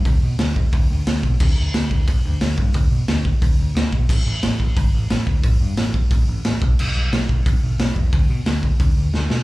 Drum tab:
CC |--------|x-------|--------|x-------|
HH |o-o-o-o-|--o-o-o-|o-o-o-o-|--o-o-o-|
SD |--o---o-|--o---o-|--o---o-|--o---o-|
BD |o--oo--o|o--oo--o|o--oo--o|o--oo--o|

CC |--------|x-------|--------|
HH |o-o-o-o-|--o-o-o-|o-o-o---|
SD |--o---o-|--o---o-|--o---oo|
BD |o--oo--o|---oo--o|o--oo---|